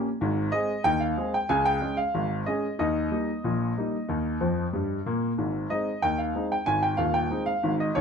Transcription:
grand piano
0.21 G#1 G#2
0.52 G#3 C4 G#4 D#5
0.84 D#2 D#3 G5
1.00 F5
1.17 G#3 C4 G#4
1.34 G5
1.49 C#2 C#3 G#5
1.65 G5
1.82 G#3 C#4 G#4
1.97 F5
2.14 G#1 G#2
2.46 G#3 C#4 G#4 D#5
2.79 D#2 D#3 D#5
3.11 G3 A#3 D#4
3.44 A#1 A#2
3.78 G3 A#3 D#4
4.09 D#2 D#3
4.41 F2 F3
4.73 G2 G3
5.06 A#2 A#3
5.38 G#1 G#2
5.70 G#3 C4 D#4 D#5
6.02 D#2 D#3 G5
6.18 F5
6.35 G#3 C4 D#4
6.52 G5
6.66 G#1 G#2 G#5
6.83 G5
6.97 D#1 D#2 F5
7.14 G5
7.31 G#3 C4 D#4
7.46 F5
7.63 G#1 G#2
7.80 D#5
7.95 D#2 D#3 C#5

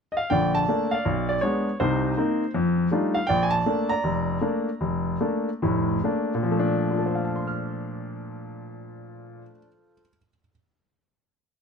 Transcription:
grand piano
0.12 D#5
0.17 F5
0.30 A#1 D3 D5 G5
0.55 A5
0.68 A3 A#3 D4
0.91 D5 F5
1.05 B1
1.29 D5
1.41 G#3 B3 D4 C#5
1.80 C2 C3 D#4 C5
2.17 A#3 C4 D#4
2.54 F2
2.91 G3 A3 D4 D#4 F4
3.14 F5
3.27 A#1 D5 G5
3.43 G#5
3.51 A5
3.66 A3 A#3 D4
3.89 D5 A#5
4.04 F1
4.41 A3 A#3 D4
4.81 F1
5.21 A3 A#3 D4
5.62 F1 A2
6.04 A3 A#3 D4
6.34 A#2
6.43 F3
6.51 A3
6.59 D4
6.91 F4
6.98 A4
7.06 C5
7.15 F5
7.25 A5
7.36 C6
7.47 F6

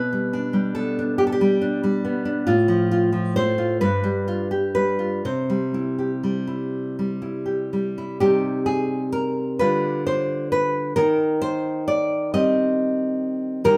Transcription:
nylon-string guitar
Already playing: B2 B4
0.13 G3
0.33 D4
0.53 G3
0.75 B3 A4
0.99 D4
1.18 G4
1.27 A4
1.32 G4
1.41 G3
1.61 D4
1.84 G3
2.05 B3
2.25 D4
2.47 A2 F4
2.68 F3
2.91 F4
3.12 F3
3.36 A3 C5
3.58 F4
3.81 G2 B4
4.04 G3
4.28 F4
4.51 G4
4.75 G3 B4
4.99 F4
5.25 C3 C5
5.50 G3
5.74 E4
5.99 G4
6.23 G3
6.47 E4
6.99 G3
7.22 E4
7.46 G4
7.73 G3
7.98 E4
8.20 C3 G3 D#4 G4
8.66 G#4
9.12 A#4
9.59 D3 G3 F4 B4
10.07 C5
10.52 B4
10.96 D#3 A#4
11.42 C5
11.88 D5
12.34 G3 C4 D#5
13.64 D#3 G3 A#3 A#4

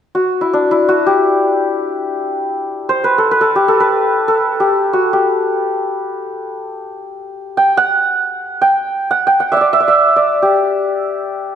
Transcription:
santur
0.15 F#4
0.41 E4
0.53 D4
0.71 E4
0.89 F#4
1.07 G4
2.89 C5
3.04 B4
3.18 A4
3.31 B4
3.41 A4
3.56 G4
3.68 A4
3.80 B4
4.28 A4
4.60 G4
4.93 F#4
5.13 G4
7.57 G5
7.77 F#5
8.62 G5
9.11 F#5
9.27 G5
9.40 F#5
9.52 D5 E5
9.57 E5
9.61 D5
9.73 E5
9.80 D5
9.88 E5
10.16 D5
10.42 G4

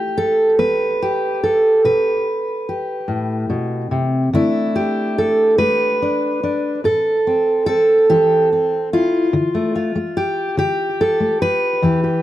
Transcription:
steel-string acoustic guitar
Already playing: G4
0.17 A4
0.59 B3 B4
1.02 G4
1.44 A4
1.85 B2 B4
2.69 G4
3.08 A2
3.50 B2
3.91 C3
4.33 D3 A3 D4 E4
4.76 G4
5.18 A4
5.58 A3 B4
6.02 D4
6.43 D4
6.84 A2 A4
7.27 C4
7.66 C4 A4
8.10 E3 C4 G4
8.53 C4
8.93 E4 F4
9.33 D3
9.55 A3
9.75 F4
9.95 A3
10.17 G4
10.57 D3 G4
11.01 A4
11.20 A3
11.42 B4
11.82 E2 E3 G4
12.04 G4

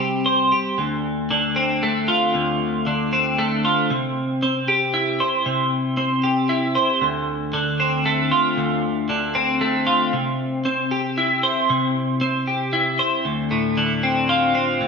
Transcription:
clean electric guitar
Already playing: C3 G3 C4
0.00 G4
0.26 C5
0.52 G4
0.78 D2
1.31 D3
1.56 C4
1.83 A3
2.08 F4
2.34 D2
2.87 D3
3.13 C4
3.39 A3
3.65 F4
3.90 C3
4.43 C4
4.68 G4
4.94 E4
5.20 C5
5.46 C3
5.97 C4
6.24 G4
6.49 E4
6.75 C5
7.01 D2
7.53 D3
7.80 C4
8.06 A3
8.31 F4
8.57 D2
9.09 D3
9.35 C4
9.61 A3
9.87 F4
10.13 C3
10.65 C4
10.91 G4
11.18 E4
11.43 C5
11.70 C3
12.21 C4
12.47 G4
12.73 E4
12.99 C5
13.25 D2
13.51 A2
13.77 D3
14.03 C4
14.29 F4
14.55 C4
14.81 D2

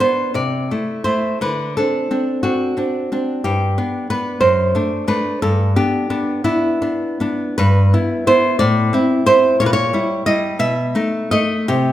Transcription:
nylon-string guitar
0.00 B3 D4 C5
0.34 C3 D5
0.71 A3 E4
1.04 A3 E4 C5
1.41 D3 B4
1.77 C4 D4 A4
2.11 C4 D4
2.43 C4 D4 F#4
2.77 C4 D4
3.12 C4 D4
3.44 G2 G4
3.78 B3 D4
4.10 B3 D4 B4
4.41 F#2 C5
4.75 A3 D4
5.08 A3 D4 B4
5.42 G2 A4
5.76 B3 D4 G4
6.10 B3 D4
6.44 B3 D4 E4
6.82 B3 D4
7.20 B3 D4
7.58 G2 B4
7.94 B3 E4
8.27 B3 E4 C5
8.59 A2 D5
8.93 C4 E4
9.26 C4 E4 C5
9.60 A#2 C#5
9.66 B4
9.73 C#5
9.93 G3 E4
10.26 G3 E4 D#5
10.59 B2 E5
10.95 A3 D#4
11.31 A3 D#4 D#5
11.68 C3 G4

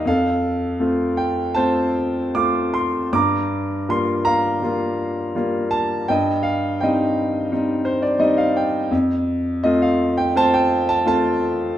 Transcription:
grand piano
0.05 F2 A4 F5
0.80 A3 C4 F4
1.17 G5
1.55 A3 C4 F4 C5 A5
2.35 A3 C4 F4 D6
2.74 C6
3.13 G2 A#5 D6
3.89 G3 A#3 F4 C6
4.25 F5 A#5
4.62 G3 A#3 F4
5.35 G3 A#3 F4
5.71 A5
6.08 G2 D#5 G5
6.43 F5
6.81 G3 C4 D#4 D#5 G5
7.52 G3 C4 D#4
7.85 C5
8.02 D5
8.19 G3 C4 D#4 D#5
8.38 F5
8.57 G5
8.91 F2
9.63 A3 C4 F4 D#5
9.82 F5
10.17 G5
10.35 A3 C4 F4 C5 A5
10.54 G5
10.89 A5
11.05 A3 C4 F4 A5

